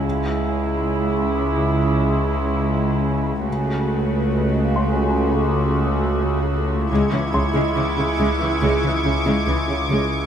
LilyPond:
<<
  \new Staff \with { instrumentName = "Violin section" } { \time 4/4 \key cis \minor \tempo 4 = 70 << { r1 | r1 | <cis''' gis'''>1 | } \\ { r1 | r1 | r4 d'''2. | } >> }
  \new Staff \with { instrumentName = "Grand piano" } { \time 4/4 \key cis \minor r1 | r4. bis''2~ bis''8~ | bis''8 bis''2. r8 | }
  \new Staff \with { instrumentName = "Viola section" } { \clef bass \time 4/4 \key cis \minor << { e'1 | fis'1 | e'1 | } \\ { gis1 | a1 | gis16 e16 cis16 gis16 e16 cis16 gis16 e16 gis16 e16 cis16 gis16 e16 cis16 gis16 r16 | } >> }
  \new Staff \with { instrumentName = "Cello section" } { \clef bass \time 4/4 \key cis \minor cis1 | cis1 | cis16 cis16 cis16 cis16 cis16 cis16 cis16 cis16 cis16 cis16 cis16 cis16 cis16 cis16 cis16 r16 | }
  \new Staff \with { instrumentName = "Double bass section" } { \clef bass \time 4/4 \key cis \minor cis,1 | cis,1 | cis,16 r16 cis,16 r16 cis,16 r16 cis,16 r16 cis,16 r16 cis,16 r16 cis,16 r16 cis,16 r16 | }
  \new Staff \with { instrumentName = "Synth drone" } { \clef bass \time 4/4 \key cis \minor cis,1 | cis,1 | cis,1 | }
>>